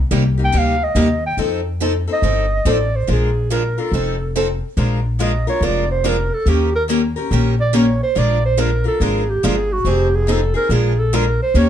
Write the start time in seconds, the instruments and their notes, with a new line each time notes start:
0.11 upright bass C2, steel-string acoustic guitar C3 G3 A#3 D#4 G4
0.38 steel-string acoustic guitar A#3 D#4 G4
0.45 clarinet G5
0.53 upright bass D2, steel-string acoustic guitar C3 G3 A#3 D#4 G4
0.59 clarinet F5
0.84 clarinet D#5
0.95 upright bass D#2, steel-string acoustic guitar C3 G3 A#3 D#4 G4
1.26 clarinet G5
1.37 upright bass F2, steel-string acoustic guitar F3 C4 D#4 A4
1.81 steel-string acoustic guitar F3 C4 D#4 A4
2.07 steel-string acoustic guitar C4 D#4 A4
2.13 clarinet D#5
2.22 upright bass G1, steel-string acoustic guitar F3 C4 D#4 A4
2.65 upright bass A1, steel-string acoustic guitar F3 C4 D#4 A4
2.71 clarinet D5
2.96 clarinet C5
3.07 upright bass A#1, steel-string acoustic guitar F3 G#3 D4 F4 A#4
3.12 clarinet G#4
3.50 steel-string acoustic guitar F3 G#3 D4 F4 A#4, clarinet A#4
3.78 steel-string acoustic guitar D4 F4 A#4, clarinet A4
3.92 upright bass F1, steel-string acoustic guitar F3 C4 D#4 A4
4.36 steel-string acoustic guitar F3 C4 D#4 A4
4.77 upright bass A#1, steel-string acoustic guitar F3 G#3 D4 F4 A#4
5.19 steel-string acoustic guitar F3 G#3 D4 F4 A#4, clarinet D#5
5.47 steel-string acoustic guitar D4 F4 A#4, clarinet C#5
5.61 upright bass F1, steel-string acoustic guitar F3 G#3 D4 F4 A#4
5.65 clarinet D5
5.92 clarinet C5
6.04 steel-string acoustic guitar F3 G#3 D4 F4 A#4
6.09 clarinet A#4
6.34 clarinet A4
6.46 upright bass D#2, steel-string acoustic guitar D#3 A#3 C#4 G4 A#4, clarinet G4
6.76 clarinet A#4
6.88 steel-string acoustic guitar D#3 A#3 C#4 G4 A#4
7.16 steel-string acoustic guitar C#4 G4 A#4
7.31 upright bass A#1, steel-string acoustic guitar D#3 A#3 C#4 G4 A#4
7.61 clarinet D5
7.74 steel-string acoustic guitar D#3 A#3 C#4 G4 A#4, clarinet C#5
8.03 clarinet C5
8.15 upright bass A#1, steel-string acoustic guitar F3 G#3 D4 F4 A#4, clarinet D5
8.46 clarinet C5
8.57 steel-string acoustic guitar F3 G#3 D4 F4 A#4, clarinet A#4
8.84 steel-string acoustic guitar D4 F4 A#4, clarinet A4
9.00 upright bass G#1, steel-string acoustic guitar F3 G#3 D4 F4 A#4, clarinet G#4
9.30 clarinet G4
9.43 upright bass G1, steel-string acoustic guitar F3 G#3 D4 F4 A#4, clarinet G#4
9.73 clarinet F#4
9.84 upright bass F1, steel-string acoustic guitar F3 C4 D#4 G#4
9.90 clarinet G4
10.15 clarinet G#4
10.27 steel-string acoustic guitar F3 C4 D#4 G#4
10.32 clarinet A4
10.54 steel-string acoustic guitar C4 D#4 G#4, clarinet A#4
10.69 upright bass A#1, steel-string acoustic guitar F3 G#3 D4 F4 A#4, clarinet G#4
11.00 clarinet A4
11.13 steel-string acoustic guitar F3 G#3 D4 F4 A#4, clarinet A#4
11.43 clarinet C5
11.54 upright bass D#2, steel-string acoustic guitar D#3 A#3 C#4 G4 A#4
11.58 clarinet C#5